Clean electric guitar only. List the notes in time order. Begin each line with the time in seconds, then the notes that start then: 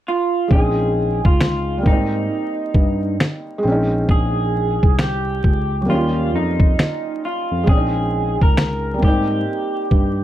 0.08 F4
0.53 G#4
1.26 F4
1.87 D#4
4.11 G#4
5.01 G4
5.90 F4
6.36 D#4
7.25 F4
7.69 G#4
8.43 A#4
9.04 G4